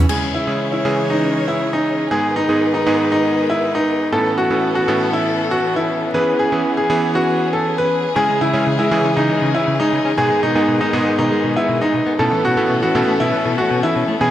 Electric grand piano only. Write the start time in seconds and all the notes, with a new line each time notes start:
0.09 C#3 G#3 C#4 E4 G#4
0.47 C#3 G#3 C#4 E4 G#4
0.85 C#3 E3 G#3 C#4 G#4
2.11 G#2 G#3 B3 D#4 G#4
2.49 G#2 G#3 B3 D#4 G#4
2.87 G#2 G#3 B3 D#4 G#4
4.12 A2 B3 C#4 E4 A4
4.50 A2 B3 C#4 E4 A4
4.88 A2 B3 C#4 E4 A4
6.14 E3 B3 C#4 E4 G#4
6.52 E3 B3 C#4 E4 G#4
6.90 E3 B3 C#4 E4 G#4
8.16 C#3 G#3 C#4 E4 G#4
8.53 C#3 G#3 C#4 E4 G#4
8.91 C#3 E3 G#3 C#4 G#4
10.18 G#2 G#3 B3 D#4 G#4
10.55 G#2 G#3 B3 D#4 G#4
10.93 G#2 G#3 B3 D#4 G#4
12.19 A2 B3 C#4 E4 A4
12.57 A2 B3 C#4 E4 A4
12.95 A2 B3 C#4 E4 A4
14.21 E3 B3 C#4 E4 G#4